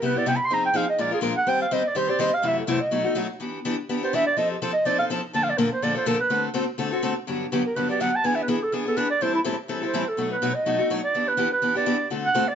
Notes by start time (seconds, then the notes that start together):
0.02 C3 G3 B3 E4 G4 B4
0.15 B3 E4 G4 D5
0.26 C3 G3 B3 E4 G4 G5
0.36 B5
0.45 C6
0.50 F3 C4 D#4 G#4 A#5
0.66 G5
0.74 F3 C4 D#4 G#4 F5
0.90 D#5
0.98 A#2 F3 G#3 D4 F4 A#4 D5
1.11 G#3 D4 F4 G#4 A#4
1.21 A#2 F3 G#3 D4 F4 A#4
1.37 F#5
1.47 D#3 G3 C4 G4 C5 G5
1.62 F5
1.71 D#3 G3 C4 G4 C5 D#5
1.87 D5
1.95 D#3 G3 C4 G4 C5
2.08 C4 G4 C5 D5
2.19 D#3 G3 C4 G4 C5 D#5
2.34 F5
2.42 F#2 C3 E3 A3 E4 F#4
2.47 E5
2.59 A4
2.67 F#2 C3 E3 A3 E4 F#4 C5
2.81 D#5
2.91 B2 F#3 A3 D#4 F#4
3.05 A3 D#4 F#4
3.15 B2 F#3 A3 D#4 F#4
3.40 E3 B3 D4 G4
3.65 E3 B3 D4 G4
3.89 E3 B3 D4 G4
4.03 B3 D4 G4 C5
4.13 E3 B3 D4 G4 E5
4.27 D5
4.37 F3 C4 D#4 A4 D#5
4.51 G4
4.62 F3 C4 D#4 A4 C5
4.73 D#5
4.85 F3 C4 D#4 A4 D5
4.99 C4 D#4 A4 F5
5.10 F3 C4 D#4 A4
5.33 A#2 D3 F3 A#3 D4 A4 A5
5.43 F5
5.50 D5
5.58 A#2 D3 F3 A#3 D4 A4 A#4
5.73 C5
5.82 A#2 D3 F3 A#3 D4 A4 D5
5.95 F3 A#3 D4 A4 C5
6.06 A#2 D3 F3 A#3 D4 A4 A#4
6.21 B4
6.30 D3 A3 C4 F#4 A4
6.54 D3 A3 C4 F#4 A4
6.78 D3 A3 C4 F#4 A4
6.91 C4 F#4 A4
7.03 D3 A3 C4 F#4 A4
7.27 G2 D3 F#3 B3 D4 G4
7.52 G2 D3 F#3 B3 D4 G4
7.66 A#4
7.76 G2 D3 F#3 B3 D4 G4 B4
7.89 F#3 B3 D4 G4 D5
8.00 G2 D3 F#3 B3 D4 G4 F#5
8.16 A5
8.24 E3 B3 D4 G#4 G#5
8.35 E5
8.43 B4
8.48 E3 B3 D4 G#4
8.63 A4
8.72 E3 B3 D4 G#4
8.85 B3 D4 G#4 A4
8.97 E3 B3 D4 G#4 B4
9.11 D5
9.21 A2 E3 G3 C4 E4 A4 C5
9.35 E4
9.44 A2 E3 G3 C4 E4 A4
9.68 A2 E3 G3 C4 E4 A4
9.82 G3 C4 E4 A4 C5
9.93 A2 E3 G3 C4 E4 A4
10.09 A4
10.17 B2 F#3 A3 D#4 F#4
10.32 B4
10.42 B2 F#3 A3 D#4 F#4
10.55 D#5
10.66 B2 F#3 A3 D#4 F#4
10.78 A3 D#4 F#4
10.90 B2 F#3 A3 D#4 F#4
11.04 D5
11.14 E3 B3 D4 G4
11.28 B4
11.37 E3 B3 D4 G4
11.53 B4
11.62 E3 B3 D4 G4
11.75 B3 D4 G4 D5
11.86 E3 B3 D4 G4
12.10 D3 A3 C4 F#4 A4
12.25 F#5
12.34 D3 A3 C4 F#4 A4
12.48 D5